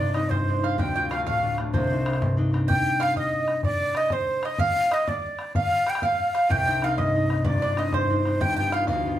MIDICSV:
0, 0, Header, 1, 5, 480
1, 0, Start_track
1, 0, Tempo, 317628
1, 1186, Time_signature, 6, 3, 24, 8
1, 13894, End_track
2, 0, Start_track
2, 0, Title_t, "Mandolin"
2, 0, Program_c, 0, 25
2, 0, Note_on_c, 0, 74, 83
2, 200, Note_off_c, 0, 74, 0
2, 229, Note_on_c, 0, 75, 63
2, 459, Note_off_c, 0, 75, 0
2, 465, Note_on_c, 0, 72, 69
2, 966, Note_on_c, 0, 77, 79
2, 967, Note_off_c, 0, 72, 0
2, 1192, Note_off_c, 0, 77, 0
2, 1198, Note_on_c, 0, 79, 78
2, 1427, Note_off_c, 0, 79, 0
2, 1445, Note_on_c, 0, 79, 90
2, 1660, Note_off_c, 0, 79, 0
2, 1680, Note_on_c, 0, 77, 66
2, 1894, Note_off_c, 0, 77, 0
2, 1912, Note_on_c, 0, 77, 79
2, 2362, Note_off_c, 0, 77, 0
2, 2622, Note_on_c, 0, 72, 64
2, 3537, Note_off_c, 0, 72, 0
2, 4051, Note_on_c, 0, 79, 89
2, 4526, Note_off_c, 0, 79, 0
2, 4532, Note_on_c, 0, 77, 85
2, 4758, Note_off_c, 0, 77, 0
2, 4787, Note_on_c, 0, 75, 73
2, 5503, Note_off_c, 0, 75, 0
2, 5509, Note_on_c, 0, 74, 75
2, 5992, Note_off_c, 0, 74, 0
2, 5998, Note_on_c, 0, 75, 89
2, 6212, Note_off_c, 0, 75, 0
2, 6227, Note_on_c, 0, 72, 71
2, 6678, Note_off_c, 0, 72, 0
2, 6728, Note_on_c, 0, 75, 77
2, 6942, Note_on_c, 0, 77, 87
2, 6959, Note_off_c, 0, 75, 0
2, 7421, Note_on_c, 0, 75, 79
2, 7443, Note_off_c, 0, 77, 0
2, 7641, Note_off_c, 0, 75, 0
2, 7666, Note_on_c, 0, 74, 75
2, 8333, Note_off_c, 0, 74, 0
2, 8396, Note_on_c, 0, 77, 81
2, 8841, Note_off_c, 0, 77, 0
2, 8863, Note_on_c, 0, 79, 75
2, 9102, Note_off_c, 0, 79, 0
2, 9108, Note_on_c, 0, 77, 80
2, 9557, Note_off_c, 0, 77, 0
2, 9592, Note_on_c, 0, 77, 80
2, 9806, Note_off_c, 0, 77, 0
2, 9827, Note_on_c, 0, 79, 92
2, 10059, Note_off_c, 0, 79, 0
2, 10083, Note_on_c, 0, 79, 88
2, 10296, Note_off_c, 0, 79, 0
2, 10336, Note_on_c, 0, 77, 81
2, 10539, Note_off_c, 0, 77, 0
2, 10547, Note_on_c, 0, 75, 83
2, 11247, Note_off_c, 0, 75, 0
2, 11253, Note_on_c, 0, 74, 72
2, 11499, Note_off_c, 0, 74, 0
2, 11517, Note_on_c, 0, 74, 88
2, 11755, Note_off_c, 0, 74, 0
2, 11766, Note_on_c, 0, 75, 73
2, 11992, Note_off_c, 0, 75, 0
2, 11998, Note_on_c, 0, 72, 77
2, 12709, Note_on_c, 0, 79, 86
2, 12731, Note_off_c, 0, 72, 0
2, 12924, Note_off_c, 0, 79, 0
2, 12942, Note_on_c, 0, 79, 84
2, 13175, Note_off_c, 0, 79, 0
2, 13181, Note_on_c, 0, 77, 75
2, 13402, Note_off_c, 0, 77, 0
2, 13418, Note_on_c, 0, 77, 73
2, 13872, Note_off_c, 0, 77, 0
2, 13894, End_track
3, 0, Start_track
3, 0, Title_t, "Flute"
3, 0, Program_c, 1, 73
3, 0, Note_on_c, 1, 74, 98
3, 213, Note_on_c, 1, 75, 91
3, 236, Note_off_c, 1, 74, 0
3, 447, Note_on_c, 1, 72, 78
3, 470, Note_off_c, 1, 75, 0
3, 1177, Note_off_c, 1, 72, 0
3, 1186, Note_on_c, 1, 79, 103
3, 1639, Note_off_c, 1, 79, 0
3, 1662, Note_on_c, 1, 77, 97
3, 1884, Note_off_c, 1, 77, 0
3, 1903, Note_on_c, 1, 77, 89
3, 2357, Note_off_c, 1, 77, 0
3, 2627, Note_on_c, 1, 72, 79
3, 3539, Note_off_c, 1, 72, 0
3, 4076, Note_on_c, 1, 79, 112
3, 4576, Note_on_c, 1, 77, 101
3, 4599, Note_off_c, 1, 79, 0
3, 4798, Note_off_c, 1, 77, 0
3, 4811, Note_on_c, 1, 75, 83
3, 5468, Note_off_c, 1, 75, 0
3, 5509, Note_on_c, 1, 74, 109
3, 5999, Note_on_c, 1, 75, 93
3, 6022, Note_off_c, 1, 74, 0
3, 6239, Note_on_c, 1, 72, 88
3, 6262, Note_off_c, 1, 75, 0
3, 6732, Note_on_c, 1, 75, 102
3, 6754, Note_off_c, 1, 72, 0
3, 6958, Note_on_c, 1, 77, 127
3, 6980, Note_off_c, 1, 75, 0
3, 7460, Note_on_c, 1, 75, 100
3, 7483, Note_off_c, 1, 77, 0
3, 7687, Note_on_c, 1, 74, 78
3, 7710, Note_off_c, 1, 75, 0
3, 8394, Note_off_c, 1, 74, 0
3, 8411, Note_on_c, 1, 77, 115
3, 8912, Note_on_c, 1, 79, 100
3, 8935, Note_off_c, 1, 77, 0
3, 9147, Note_on_c, 1, 77, 97
3, 9169, Note_off_c, 1, 79, 0
3, 9852, Note_on_c, 1, 79, 122
3, 9875, Note_off_c, 1, 77, 0
3, 10338, Note_on_c, 1, 77, 97
3, 10361, Note_off_c, 1, 79, 0
3, 10564, Note_on_c, 1, 75, 83
3, 10587, Note_off_c, 1, 77, 0
3, 11272, Note_off_c, 1, 75, 0
3, 11296, Note_on_c, 1, 74, 100
3, 11765, Note_on_c, 1, 75, 88
3, 11788, Note_off_c, 1, 74, 0
3, 12006, Note_on_c, 1, 72, 90
3, 12029, Note_off_c, 1, 75, 0
3, 12715, Note_on_c, 1, 79, 123
3, 12737, Note_off_c, 1, 72, 0
3, 12957, Note_off_c, 1, 79, 0
3, 12966, Note_on_c, 1, 79, 99
3, 13207, Note_on_c, 1, 77, 88
3, 13230, Note_off_c, 1, 79, 0
3, 13431, Note_off_c, 1, 77, 0
3, 13442, Note_on_c, 1, 77, 72
3, 13885, Note_off_c, 1, 77, 0
3, 13894, End_track
4, 0, Start_track
4, 0, Title_t, "Harp"
4, 0, Program_c, 2, 46
4, 0, Note_on_c, 2, 31, 67
4, 0, Note_on_c, 2, 43, 69
4, 0, Note_on_c, 2, 60, 46
4, 0, Note_on_c, 2, 62, 44
4, 5, Note_on_c, 2, 63, 55
4, 223, Note_off_c, 2, 60, 0
4, 227, Note_off_c, 2, 62, 0
4, 229, Note_on_c, 2, 60, 49
4, 233, Note_on_c, 2, 62, 46
4, 238, Note_off_c, 2, 63, 0
4, 244, Note_on_c, 2, 63, 58
4, 447, Note_off_c, 2, 43, 0
4, 465, Note_on_c, 2, 43, 66
4, 713, Note_off_c, 2, 60, 0
4, 719, Note_on_c, 2, 60, 50
4, 727, Note_off_c, 2, 62, 0
4, 733, Note_off_c, 2, 63, 0
4, 733, Note_on_c, 2, 62, 41
4, 739, Note_on_c, 2, 63, 44
4, 931, Note_off_c, 2, 60, 0
4, 937, Note_on_c, 2, 60, 50
4, 943, Note_off_c, 2, 62, 0
4, 948, Note_off_c, 2, 63, 0
4, 949, Note_on_c, 2, 62, 34
4, 954, Note_on_c, 2, 63, 49
4, 1179, Note_on_c, 2, 38, 71
4, 1185, Note_on_c, 2, 50, 69
4, 1261, Note_off_c, 2, 31, 0
4, 1261, Note_off_c, 2, 43, 0
4, 1269, Note_off_c, 2, 63, 0
4, 1439, Note_on_c, 2, 57, 47
4, 1447, Note_off_c, 2, 62, 0
4, 1451, Note_on_c, 2, 65, 60
4, 1453, Note_on_c, 2, 62, 45
4, 1672, Note_off_c, 2, 57, 0
4, 1677, Note_off_c, 2, 62, 0
4, 1678, Note_on_c, 2, 57, 53
4, 1683, Note_on_c, 2, 62, 50
4, 1684, Note_off_c, 2, 65, 0
4, 1690, Note_on_c, 2, 65, 57
4, 1921, Note_on_c, 2, 45, 76
4, 1982, Note_off_c, 2, 50, 0
4, 2152, Note_off_c, 2, 57, 0
4, 2158, Note_on_c, 2, 57, 43
4, 2159, Note_off_c, 2, 62, 0
4, 2165, Note_on_c, 2, 62, 47
4, 2173, Note_off_c, 2, 65, 0
4, 2179, Note_on_c, 2, 65, 46
4, 2394, Note_off_c, 2, 57, 0
4, 2400, Note_on_c, 2, 57, 39
4, 2405, Note_off_c, 2, 62, 0
4, 2411, Note_on_c, 2, 62, 41
4, 2416, Note_off_c, 2, 65, 0
4, 2422, Note_on_c, 2, 65, 40
4, 2630, Note_on_c, 2, 36, 71
4, 2638, Note_on_c, 2, 48, 76
4, 2702, Note_off_c, 2, 38, 0
4, 2702, Note_off_c, 2, 45, 0
4, 2857, Note_off_c, 2, 60, 0
4, 2863, Note_on_c, 2, 60, 54
4, 2879, Note_off_c, 2, 62, 0
4, 2885, Note_on_c, 2, 62, 47
4, 2913, Note_on_c, 2, 63, 57
4, 3093, Note_off_c, 2, 60, 0
4, 3096, Note_off_c, 2, 62, 0
4, 3099, Note_on_c, 2, 60, 55
4, 3102, Note_on_c, 2, 62, 40
4, 3107, Note_off_c, 2, 63, 0
4, 3113, Note_on_c, 2, 63, 51
4, 3350, Note_on_c, 2, 43, 70
4, 3422, Note_off_c, 2, 48, 0
4, 3575, Note_off_c, 2, 60, 0
4, 3581, Note_on_c, 2, 60, 46
4, 3583, Note_off_c, 2, 62, 0
4, 3589, Note_on_c, 2, 62, 44
4, 3590, Note_off_c, 2, 63, 0
4, 3597, Note_on_c, 2, 63, 55
4, 3810, Note_off_c, 2, 60, 0
4, 3816, Note_on_c, 2, 60, 44
4, 3825, Note_off_c, 2, 62, 0
4, 3831, Note_on_c, 2, 62, 33
4, 3833, Note_off_c, 2, 63, 0
4, 3839, Note_on_c, 2, 63, 46
4, 4142, Note_off_c, 2, 36, 0
4, 4142, Note_off_c, 2, 43, 0
4, 6234, Note_off_c, 2, 65, 0
4, 7430, Note_off_c, 2, 57, 0
4, 7925, Note_off_c, 2, 63, 0
4, 8061, Note_off_c, 2, 62, 0
4, 8350, Note_off_c, 2, 60, 0
4, 9810, Note_on_c, 2, 36, 65
4, 9818, Note_on_c, 2, 48, 70
4, 10082, Note_on_c, 2, 60, 46
4, 10093, Note_on_c, 2, 62, 45
4, 10099, Note_on_c, 2, 63, 53
4, 10302, Note_off_c, 2, 60, 0
4, 10308, Note_on_c, 2, 60, 51
4, 10315, Note_off_c, 2, 63, 0
4, 10316, Note_off_c, 2, 62, 0
4, 10321, Note_on_c, 2, 63, 60
4, 10322, Note_on_c, 2, 62, 49
4, 10547, Note_on_c, 2, 43, 81
4, 10616, Note_off_c, 2, 48, 0
4, 10793, Note_off_c, 2, 60, 0
4, 10800, Note_on_c, 2, 60, 44
4, 10809, Note_off_c, 2, 63, 0
4, 10815, Note_on_c, 2, 63, 56
4, 10905, Note_off_c, 2, 62, 0
4, 11014, Note_off_c, 2, 60, 0
4, 11020, Note_on_c, 2, 60, 38
4, 11032, Note_on_c, 2, 62, 36
4, 11034, Note_off_c, 2, 63, 0
4, 11041, Note_on_c, 2, 63, 54
4, 11234, Note_off_c, 2, 43, 0
4, 11248, Note_on_c, 2, 31, 76
4, 11257, Note_on_c, 2, 43, 74
4, 11335, Note_off_c, 2, 36, 0
4, 11496, Note_off_c, 2, 60, 0
4, 11502, Note_on_c, 2, 60, 46
4, 11508, Note_off_c, 2, 62, 0
4, 11513, Note_off_c, 2, 63, 0
4, 11514, Note_on_c, 2, 62, 49
4, 11519, Note_on_c, 2, 63, 50
4, 11745, Note_off_c, 2, 60, 0
4, 11750, Note_off_c, 2, 62, 0
4, 11751, Note_on_c, 2, 60, 55
4, 11757, Note_off_c, 2, 63, 0
4, 11757, Note_on_c, 2, 62, 47
4, 11763, Note_on_c, 2, 63, 58
4, 11974, Note_off_c, 2, 43, 0
4, 11992, Note_on_c, 2, 43, 76
4, 12229, Note_off_c, 2, 60, 0
4, 12235, Note_on_c, 2, 60, 50
4, 12237, Note_off_c, 2, 62, 0
4, 12240, Note_off_c, 2, 63, 0
4, 12243, Note_on_c, 2, 62, 43
4, 12246, Note_on_c, 2, 63, 52
4, 12461, Note_off_c, 2, 60, 0
4, 12467, Note_on_c, 2, 60, 42
4, 12474, Note_off_c, 2, 62, 0
4, 12480, Note_on_c, 2, 62, 46
4, 12481, Note_off_c, 2, 63, 0
4, 12488, Note_on_c, 2, 63, 51
4, 12686, Note_off_c, 2, 31, 0
4, 12688, Note_off_c, 2, 43, 0
4, 12701, Note_on_c, 2, 31, 65
4, 12710, Note_on_c, 2, 43, 70
4, 12967, Note_on_c, 2, 59, 50
4, 12978, Note_on_c, 2, 65, 44
4, 12978, Note_on_c, 2, 67, 60
4, 13058, Note_off_c, 2, 60, 0
4, 13188, Note_off_c, 2, 59, 0
4, 13194, Note_on_c, 2, 59, 54
4, 13195, Note_off_c, 2, 65, 0
4, 13201, Note_off_c, 2, 67, 0
4, 13201, Note_on_c, 2, 65, 47
4, 13207, Note_on_c, 2, 67, 60
4, 13434, Note_on_c, 2, 38, 71
4, 13497, Note_off_c, 2, 43, 0
4, 13524, Note_off_c, 2, 63, 0
4, 13680, Note_off_c, 2, 59, 0
4, 13684, Note_off_c, 2, 65, 0
4, 13686, Note_on_c, 2, 59, 51
4, 13690, Note_on_c, 2, 65, 49
4, 13699, Note_off_c, 2, 67, 0
4, 13705, Note_on_c, 2, 67, 45
4, 13894, Note_off_c, 2, 31, 0
4, 13894, Note_off_c, 2, 38, 0
4, 13894, Note_off_c, 2, 59, 0
4, 13894, Note_off_c, 2, 62, 0
4, 13894, Note_off_c, 2, 65, 0
4, 13894, Note_off_c, 2, 67, 0
4, 13894, End_track
5, 0, Start_track
5, 0, Title_t, "Bodhran"
5, 218, Note_on_c, 9, 64, 57
5, 369, Note_off_c, 9, 64, 0
5, 467, Note_on_c, 9, 64, 78
5, 618, Note_off_c, 9, 64, 0
5, 712, Note_on_c, 9, 64, 26
5, 863, Note_off_c, 9, 64, 0
5, 961, Note_on_c, 9, 64, 44
5, 1112, Note_off_c, 9, 64, 0
5, 1187, Note_on_c, 9, 64, 81
5, 1338, Note_off_c, 9, 64, 0
5, 1447, Note_on_c, 9, 64, 23
5, 1598, Note_off_c, 9, 64, 0
5, 1676, Note_on_c, 9, 64, 66
5, 1827, Note_off_c, 9, 64, 0
5, 1915, Note_on_c, 9, 64, 81
5, 2066, Note_off_c, 9, 64, 0
5, 2167, Note_on_c, 9, 64, 23
5, 2318, Note_off_c, 9, 64, 0
5, 2389, Note_on_c, 9, 64, 52
5, 2540, Note_off_c, 9, 64, 0
5, 2628, Note_on_c, 9, 64, 93
5, 2779, Note_off_c, 9, 64, 0
5, 2877, Note_on_c, 9, 64, 22
5, 3029, Note_off_c, 9, 64, 0
5, 3115, Note_on_c, 9, 64, 61
5, 3225, Note_off_c, 9, 64, 0
5, 3225, Note_on_c, 9, 64, 58
5, 3354, Note_off_c, 9, 64, 0
5, 3354, Note_on_c, 9, 64, 77
5, 3505, Note_off_c, 9, 64, 0
5, 3594, Note_on_c, 9, 64, 28
5, 3745, Note_off_c, 9, 64, 0
5, 3840, Note_on_c, 9, 64, 45
5, 3991, Note_off_c, 9, 64, 0
5, 4075, Note_on_c, 9, 64, 91
5, 4226, Note_off_c, 9, 64, 0
5, 4327, Note_on_c, 9, 64, 20
5, 4478, Note_off_c, 9, 64, 0
5, 4549, Note_on_c, 9, 64, 55
5, 4700, Note_off_c, 9, 64, 0
5, 4775, Note_on_c, 9, 64, 63
5, 4926, Note_off_c, 9, 64, 0
5, 5028, Note_on_c, 9, 64, 26
5, 5179, Note_off_c, 9, 64, 0
5, 5254, Note_on_c, 9, 64, 48
5, 5405, Note_off_c, 9, 64, 0
5, 5488, Note_on_c, 9, 64, 80
5, 5639, Note_off_c, 9, 64, 0
5, 5736, Note_on_c, 9, 64, 24
5, 5887, Note_off_c, 9, 64, 0
5, 5965, Note_on_c, 9, 64, 53
5, 6116, Note_off_c, 9, 64, 0
5, 6197, Note_on_c, 9, 64, 81
5, 6349, Note_off_c, 9, 64, 0
5, 6450, Note_on_c, 9, 64, 26
5, 6601, Note_off_c, 9, 64, 0
5, 6691, Note_on_c, 9, 64, 61
5, 6842, Note_off_c, 9, 64, 0
5, 6929, Note_on_c, 9, 64, 85
5, 7080, Note_off_c, 9, 64, 0
5, 7183, Note_on_c, 9, 64, 25
5, 7334, Note_off_c, 9, 64, 0
5, 7430, Note_on_c, 9, 64, 72
5, 7581, Note_off_c, 9, 64, 0
5, 7670, Note_on_c, 9, 64, 73
5, 7822, Note_off_c, 9, 64, 0
5, 7926, Note_on_c, 9, 64, 27
5, 8077, Note_off_c, 9, 64, 0
5, 8139, Note_on_c, 9, 64, 52
5, 8291, Note_off_c, 9, 64, 0
5, 8386, Note_on_c, 9, 64, 87
5, 8537, Note_off_c, 9, 64, 0
5, 8636, Note_on_c, 9, 64, 26
5, 8787, Note_off_c, 9, 64, 0
5, 8863, Note_on_c, 9, 64, 61
5, 8995, Note_off_c, 9, 64, 0
5, 8995, Note_on_c, 9, 64, 67
5, 9098, Note_off_c, 9, 64, 0
5, 9098, Note_on_c, 9, 64, 73
5, 9249, Note_off_c, 9, 64, 0
5, 9363, Note_on_c, 9, 64, 27
5, 9515, Note_off_c, 9, 64, 0
5, 9592, Note_on_c, 9, 64, 46
5, 9743, Note_off_c, 9, 64, 0
5, 9830, Note_on_c, 9, 64, 88
5, 9981, Note_off_c, 9, 64, 0
5, 10081, Note_on_c, 9, 64, 25
5, 10232, Note_off_c, 9, 64, 0
5, 10310, Note_on_c, 9, 64, 53
5, 10461, Note_off_c, 9, 64, 0
5, 10547, Note_on_c, 9, 64, 74
5, 10698, Note_off_c, 9, 64, 0
5, 10801, Note_on_c, 9, 64, 22
5, 10952, Note_off_c, 9, 64, 0
5, 11032, Note_on_c, 9, 64, 53
5, 11183, Note_off_c, 9, 64, 0
5, 11253, Note_on_c, 9, 64, 88
5, 11404, Note_off_c, 9, 64, 0
5, 11745, Note_on_c, 9, 64, 57
5, 11896, Note_off_c, 9, 64, 0
5, 11976, Note_on_c, 9, 64, 82
5, 12127, Note_off_c, 9, 64, 0
5, 12233, Note_on_c, 9, 64, 26
5, 12384, Note_off_c, 9, 64, 0
5, 12474, Note_on_c, 9, 64, 46
5, 12625, Note_off_c, 9, 64, 0
5, 12712, Note_on_c, 9, 64, 79
5, 12863, Note_off_c, 9, 64, 0
5, 12963, Note_on_c, 9, 64, 22
5, 13114, Note_off_c, 9, 64, 0
5, 13184, Note_on_c, 9, 64, 58
5, 13335, Note_off_c, 9, 64, 0
5, 13406, Note_on_c, 9, 64, 79
5, 13558, Note_off_c, 9, 64, 0
5, 13677, Note_on_c, 9, 64, 25
5, 13828, Note_off_c, 9, 64, 0
5, 13894, End_track
0, 0, End_of_file